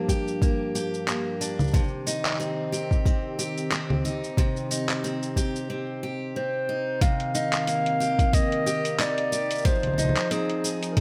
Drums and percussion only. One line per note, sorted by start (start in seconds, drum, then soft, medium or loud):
0.09 kick medium
0.09 shaker medium
0.28 shaker soft
0.42 kick loud
0.42 shaker soft
0.75 shaker medium
0.94 shaker soft
1.08 clap medium
1.08 shaker soft
1.41 shaker medium
1.59 low conga medium
1.59 shaker soft
1.64 shaker soft
1.67 shaker soft
1.71 kick loud
1.71 shaker soft
1.74 shaker soft
1.79 shaker soft
1.88 shaker soft
2.07 shaker medium
2.25 clap medium
2.25 shaker soft
2.28 clap medium
2.28 clap soft
2.32 clap soft
2.35 clap soft
2.38 clap soft
2.38 shaker soft
2.73 shaker medium
2.91 kick medium
2.91 shaker soft
3.06 kick loud
3.06 shaker soft
3.39 shaker medium
3.58 shaker soft
3.72 clap medium
3.72 shaker soft
3.90 low conga medium
4.05 shaker medium
4.24 shaker soft
4.37 kick loud
4.37 shaker soft
4.56 shaker soft
4.71 shaker medium
4.89 clap medium
4.89 shaker soft
5.04 shaker soft
5.23 shaker soft
5.36 kick medium
5.36 shaker medium
5.56 shaker soft
7.01 kick loud
7.01 closed hi-hat medium
7.01 shaker soft
7.20 closed hi-hat soft
7.35 shaker medium
7.53 clap medium
7.53 closed hi-hat soft
7.53 shaker soft
7.67 closed hi-hat medium
7.67 shaker soft
7.86 closed hi-hat soft
8.01 shaker medium
8.19 kick loud
8.19 closed hi-hat soft
8.19 shaker soft
8.33 kick loud
8.33 closed hi-hat medium
8.33 shaker soft
8.52 closed hi-hat soft
8.67 shaker medium
8.85 closed hi-hat soft
8.85 shaker soft
9.00 clap medium
9.00 closed hi-hat medium
9.00 shaker soft
9.18 closed hi-hat soft
9.33 shaker medium
9.51 closed hi-hat soft
9.51 shaker soft
9.55 shaker soft
9.58 shaker soft
9.62 kick loud
9.62 closed hi-hat medium
9.62 shaker soft
9.65 shaker soft
9.70 shaker soft
9.79 closed hi-hat soft
9.79 low conga soft
9.79 shaker soft
9.87 low conga soft
9.93 low conga soft
9.98 low conga soft
9.98 shaker medium
10.05 low conga soft
10.09 low conga soft
10.17 clap medium
10.17 closed hi-hat soft
10.17 shaker soft
10.31 closed hi-hat medium
10.31 shaker soft
10.50 closed hi-hat soft
10.65 shaker medium
10.83 closed hi-hat soft
10.83 shaker soft
10.97 kick loud
10.97 closed hi-hat medium